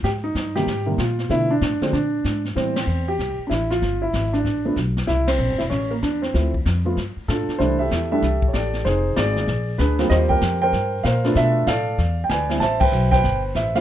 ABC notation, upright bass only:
X:1
M:4/4
L:1/8
Q:"Swing" 1/4=191
K:C
V:1 name="Upright bass" clef=bass
_A,,2 G,,2 A,,2 _B,,2 | B,,2 A,, z _B,,2 _A,,2 | A,,2 E,,2 C,, z A,,,2 | G,,,2 _A,,,2 =A,,,2 B,,,2 |
C,,2 (3_B,,, G,,, E,,, A,,,2 E,,2 | D,,2 F,,2 G,, z A,, z | C,,2 E,,2 C,,2 A,,,2 | F,,,2 _A,,,2 _B,,,2 D,,2 |
_E,,2 F,,2 G,,2 _B,,2 | B,,2 A,,2 E,,2 D,,2 | A,,,2 B,,,2 G,,,2 A,,,2 |]